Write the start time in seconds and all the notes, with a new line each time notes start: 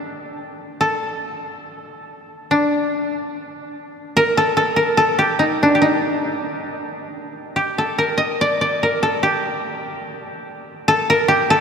Already playing: D4 G4 A4
0.81 A4
2.51 D4
4.17 A#4
4.37 A4
4.57 A4
4.76 A#4
4.97 A4
5.19 G4
5.39 D#4
5.63 D4
5.75 G4
5.82 D#4
7.56 G4
7.78 A4
7.98 A#4
8.18 D#5
8.41 D5
8.61 D5
8.83 A#4
9.03 A4
9.23 G4
10.88 A4
11.10 A#4
11.28 G4
11.50 A4